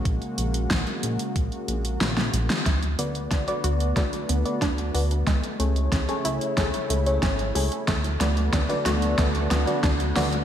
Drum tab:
HH |xxxxxxxxxxxxxxxx|xxxxxxxxxxxxxxox|xxxxxxxxxxxxxxox|xxxxxxxxxxxxxxox|
SD |----o-------oo-o|o---o---o---o---|o---o---o---o---|o-o-o-o-o-o-o-o-|
BD |o---o---o-------|o---o---o---o---|o---o---o---o---|o---o---o---o---|